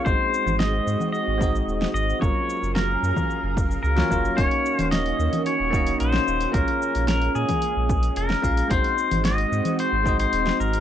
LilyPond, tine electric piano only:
\new Staff \with { instrumentName = "Tine electric piano" } { \time 4/4 \key aes \mixolydian \tempo 4 = 111 <aes c' ees' ges' c''>2~ <aes c' ees' ges' c''>8 <aes c' ees' ges' ees''>4. | <ges bes des' f' bes'>2.~ <ges bes des' f' bes'>16 <ges bes des' f' des''>16 <ges bes des' f' bes'>8 | <bes des' ees' ges' des''>2~ <bes des' ees' ges' des''>8 <bes des' ees' ges' ees''>4. | <bes des' f' aes' des''>2.~ <bes des' f' aes' des''>8 <bes des' f' aes' f''>8 |
<aes c' ees' ges' c''>2~ <aes c' ees' ges' c''>8 <aes c' ees' ges' ees''>4. | }